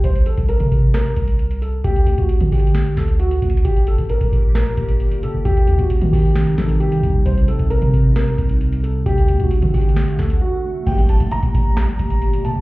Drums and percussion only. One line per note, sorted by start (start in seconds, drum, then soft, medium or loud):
0.04 kick loud
0.04 closed hi-hat medium
0.16 closed hi-hat medium
0.26 closed hi-hat medium
0.37 kick loud
0.37 closed hi-hat medium
0.49 closed hi-hat medium
0.60 kick loud
0.60 closed hi-hat medium
0.72 kick loud
0.72 closed hi-hat medium
0.94 snare loud
0.94 closed hi-hat medium
1.06 closed hi-hat medium
1.16 kick medium
1.16 closed hi-hat medium
1.28 closed hi-hat medium
1.39 closed hi-hat medium
1.51 closed hi-hat medium
1.62 closed hi-hat medium
1.84 kick loud
1.84 closed hi-hat medium
1.96 closed hi-hat medium
2.07 closed hi-hat medium
2.18 kick loud
2.18 closed hi-hat medium
2.29 closed hi-hat medium
2.40 kick loud
2.40 closed hi-hat medium
2.52 kick loud
2.52 closed hi-hat soft
2.52 open hi-hat medium
2.60 closed hi-hat medium
2.67 closed hi-hat medium
2.75 snare loud
2.75 closed hi-hat medium
2.86 closed hi-hat medium
2.97 kick medium
2.97 snare medium
2.97 closed hi-hat medium
3.08 closed hi-hat medium
3.19 closed hi-hat medium
3.31 closed hi-hat medium
3.42 kick loud
3.42 closed hi-hat medium
3.50 closed hi-hat medium
3.57 closed hi-hat medium
3.65 kick loud
3.65 closed hi-hat medium
3.76 closed hi-hat medium
3.87 closed hi-hat medium
3.98 kick loud
3.98 closed hi-hat medium
4.09 closed hi-hat medium
4.21 kick medium
4.21 closed hi-hat medium
4.32 kick loud
4.32 closed hi-hat medium
4.55 snare loud
4.55 closed hi-hat medium
4.66 closed hi-hat medium
4.77 kick loud
4.77 closed hi-hat medium
4.89 closed hi-hat medium
5.00 closed hi-hat medium
5.12 closed hi-hat medium
5.23 closed hi-hat medium
5.45 kick loud
5.45 closed hi-hat medium
5.57 closed hi-hat medium
5.67 closed hi-hat medium
5.79 kick loud
5.79 closed hi-hat medium
5.90 closed hi-hat medium
6.01 kick loud
6.01 closed hi-hat medium
6.13 kick loud
6.13 open hi-hat medium
6.36 snare loud
6.36 closed hi-hat medium
6.47 closed hi-hat medium
6.58 kick medium
6.58 snare medium
6.58 closed hi-hat medium
6.69 closed hi-hat medium
6.80 closed hi-hat medium
6.92 closed hi-hat medium
7.03 kick loud
7.03 closed hi-hat medium
7.26 kick loud
7.26 closed hi-hat medium
7.38 closed hi-hat medium
7.48 closed hi-hat medium
7.59 kick loud
7.59 closed hi-hat medium
7.71 closed hi-hat medium
7.82 kick loud
7.82 closed hi-hat medium
7.93 kick loud
7.93 closed hi-hat medium
8.16 snare loud
8.16 closed hi-hat medium
8.27 closed hi-hat medium
8.38 kick medium
8.38 closed hi-hat medium
8.49 closed hi-hat medium
8.61 closed hi-hat medium
8.73 closed hi-hat medium
8.84 closed hi-hat medium
9.06 kick loud
9.06 closed hi-hat medium
9.18 closed hi-hat medium
9.28 closed hi-hat medium
9.40 kick loud
9.40 closed hi-hat medium
9.51 closed hi-hat medium
9.62 kick loud
9.62 closed hi-hat medium
9.74 kick loud
9.74 closed hi-hat soft
9.74 open hi-hat medium
9.81 closed hi-hat medium
9.89 closed hi-hat medium
9.96 snare loud
9.96 closed hi-hat medium
10.08 closed hi-hat medium
10.19 kick medium
10.19 snare medium
10.19 closed hi-hat medium
10.30 closed hi-hat medium
10.87 kick loud
10.87 closed hi-hat medium
10.87 crash loud
10.98 closed hi-hat medium
11.09 closed hi-hat medium
11.20 kick loud
11.20 closed hi-hat medium
11.31 closed hi-hat medium
11.43 kick loud
11.43 closed hi-hat medium
11.54 kick loud
11.54 closed hi-hat medium
11.77 snare loud
11.77 closed hi-hat medium
11.88 closed hi-hat medium
11.99 kick medium
11.99 closed hi-hat medium
12.10 closed hi-hat medium
12.22 closed hi-hat medium
12.33 closed hi-hat medium
12.45 closed hi-hat medium